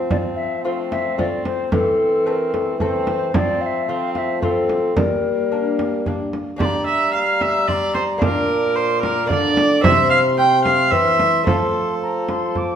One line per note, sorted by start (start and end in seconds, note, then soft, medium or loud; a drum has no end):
0.00 1.40 F3 soft
0.00 1.45 F3 medium
0.00 0.61 C4 medium
0.11 0.17 D5 medium
0.11 frame drum medium
0.36 0.63 E5 medium
0.63 1.15 A3 soft
0.63 1.70 C4 medium
0.63 1.15 C4 soft
0.63 1.15 F4 soft
0.63 0.70 F5 medium
0.92 1.18 E5 medium
0.92 frame drum medium
1.18 1.68 A3 soft
1.18 1.68 C4 soft
1.18 1.68 F4 soft
1.18 1.45 D5 medium
1.18 frame drum soft
1.45 1.74 C5 medium
1.45 frame drum medium
1.72 3.29 E3 soft
1.72 3.30 E3 medium
1.72 2.78 C4 medium
1.72 2.28 A4 medium
1.72 frame drum medium
2.26 2.76 A3 soft
2.26 2.76 C4 soft
2.26 2.77 A4 soft
2.26 2.32 C5 medium
2.31 2.55 A#4 medium
2.54 2.79 A4 medium
2.54 frame drum soft
2.80 3.30 A3 soft
2.80 3.30 C4 soft
2.80 3.33 C4 medium
2.80 3.30 A4 medium
2.80 3.37 C5 medium
2.80 frame drum soft
3.07 frame drum soft
3.34 4.92 F3 medium
3.34 3.84 C4 medium
3.34 3.63 D5 loud
3.34 frame drum medium
3.61 3.67 F5 medium
3.66 3.90 E5 medium
3.88 4.38 A3 soft
3.88 4.41 C4 medium
3.88 4.38 C4 soft
3.88 4.39 F4 soft
3.88 4.13 F5 medium
4.14 4.19 F5 medium
4.14 frame drum soft
4.18 4.41 E5 medium
4.42 4.93 A3 soft
4.42 4.98 C4 medium
4.42 4.93 C4 soft
4.42 4.93 F4 medium
4.42 4.98 A4 medium
4.42 frame drum soft
4.69 frame drum soft
4.96 6.30 G3 medium
4.96 6.29 G3 soft
4.96 6.40 A#3 medium
4.96 6.06 A#4 medium
4.96 frame drum medium
5.52 6.02 A#3 soft
5.52 6.02 D4 soft
5.79 frame drum soft
6.06 6.55 A#3 soft
6.06 6.57 D4 soft
6.06 frame drum soft
6.33 frame drum soft
6.56 8.18 G3 medium
6.56 8.17 G3 soft
6.56 8.17 A#3 soft
6.56 8.17 D4 soft
6.56 8.18 G4 soft
6.56 6.85 D5 medium
6.56 frame drum medium
6.61 6.66 C6 medium
6.65 7.65 A#5 medium
6.87 7.13 E5 medium
7.14 7.43 F5 medium
7.41 7.69 E5 medium
7.41 frame drum soft
7.68 7.94 D5 medium
7.68 7.74 C6 medium
7.68 frame drum soft
7.73 8.23 A#5 medium
7.95 8.03 C5 medium
7.95 frame drum soft
8.18 9.26 A#2 medium
8.18 9.25 A#3 medium
8.18 9.25 D4 medium
8.18 9.26 F4 soft
8.18 9.30 D6 medium
8.18 frame drum medium
8.22 9.32 A#2 medium
8.22 8.77 A#4 medium
8.76 9.02 C5 medium
9.02 9.29 A#4 medium
9.02 frame drum soft
9.26 9.80 D3 medium
9.26 9.83 D3 medium
9.26 9.80 A#3 medium
9.26 9.81 D4 medium
9.26 9.82 F4 soft
9.26 9.83 D5 loud
9.26 frame drum medium
9.31 9.86 D6 medium
9.57 frame drum medium
9.82 10.94 C3 medium
9.82 10.88 C3 medium
9.82 10.88 C4 medium
9.82 10.88 E4 soft
9.82 10.10 E5 loud
9.82 10.38 C6 medium
9.82 frame drum medium
10.10 10.18 F5 loud
10.38 10.64 G5 loud
10.38 10.91 C6 medium
10.65 10.93 F5 loud
10.65 frame drum medium
10.90 11.43 E3 medium
10.90 11.46 E3 medium
10.90 11.44 C4 medium
10.90 11.44 E4 soft
10.90 11.46 E5 loud
10.90 11.45 C6 medium
10.90 frame drum soft
11.19 frame drum medium
11.43 12.76 F3 medium
11.43 12.76 F3 soft
11.43 12.76 A3 soft
11.43 12.76 C4 soft
11.43 12.76 F4 soft
11.43 12.53 A4 medium
11.43 11.95 C6 medium
11.43 frame drum medium
12.02 12.32 A#5 medium
12.29 12.59 C6 medium
12.29 frame drum soft
12.55 12.76 D6 medium
12.55 frame drum soft